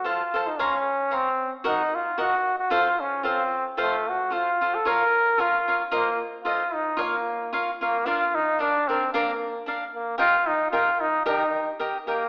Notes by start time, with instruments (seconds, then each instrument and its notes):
0.04 trombone F4, cavaquinho A4 C5 F5 A5
0.34 cavaquinho A4 C5 F5 A5
0.47 trombone D#4
0.59 trombone C#4, cavaquinho C#5 F5 A#5 C6
1.11 trombone C4, cavaquinho C#5 F5 A#5 C6
1.64 trombone D#4, cavaquinho F#4 A#4 D#5 F#5
1.95 trombone F4
2.18 cavaquinho F#4 A#4 D#5 F#5, trombone F#4
2.59 trombone F#4
2.70 cavaquinho F4 A4 C5 F5, trombone F4
3.00 trombone C#4
3.23 trombone C4, cavaquinho F4 A4 C5 F5
3.77 trombone A3, cavaquinho F4 A4 C5 F5
4.09 trombone F#4
4.30 cavaquinho F4 A4 C5 F5, trombone F4
4.61 cavaquinho F4 A4 C5 F5
4.75 trombone A4
4.85 cavaquinho F4 A#4 C#5 F5, trombone A#4
5.38 cavaquinho F4 A#4 C#5 F5, trombone F4
5.68 cavaquinho F4 A#4 C#5 F5
5.91 trombone A#3, cavaquinho F4 A#4 C5 D#5
6.44 trombone F4, cavaquinho F4 A4 C5 D#5
6.74 trombone D#4
6.97 cavaquinho F4 A#4 C#5 F5
7.02 trombone A#3
7.53 cavaquinho F4 A#4 C#5 F5
7.81 trombone A#3, cavaquinho F4 A#4 C#5 F5
8.06 cavaquinho D4 A#4 D5 F5, trombone F4
8.35 trombone D#4
8.59 cavaquinho D4 A#4 D5 F5, trombone D4
8.88 trombone C4, cavaquinho D4 A#4 D5 F5
9.13 trombone A#3, cavaquinho D4 A#4 D5 F5
9.66 cavaquinho D4 A#4 D5 F5
9.95 trombone A#3
10.18 trombone F4, cavaquinho G4 A#4 D#5 G5
10.47 trombone D#4
10.71 trombone F4, cavaquinho G4 A#4 D#5 G5
11.01 trombone D#4
11.26 trombone D#4, cavaquinho G4 A#4 D#5 G5
11.79 cavaquinho G4 A#4 D#5 G5
12.07 trombone A#3, cavaquinho G4 A#4 D#5 G5